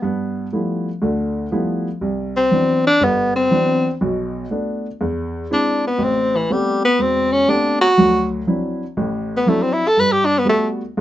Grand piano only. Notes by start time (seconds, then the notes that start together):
0.02 G2 B3
0.53 F3 G3 A3 B3 E4
1.02 D2 D3
1.52 F3 G3 A3 B3 E4
2.01 C2
2.51 E3 F#3 B3 C4 D4
3.01 G1
3.51 E3 F#3 B3 C4 D4
4.01 B1 B2
4.51 A3 B3 D4
5.01 E2
5.50 G#3 C4 D4 E4
5.98 A1
6.50 A3 B3 C4 G4
6.99 E1
7.48 A3 B3 C4 G4
7.98 D2 F#3
8.47 F#3 C4 D4 E4
8.97 A1 A2
9.46 F#3 C4 D4 E4
9.97 G2
10.45 G3 A3 B3 F#4
10.97 E2 G#3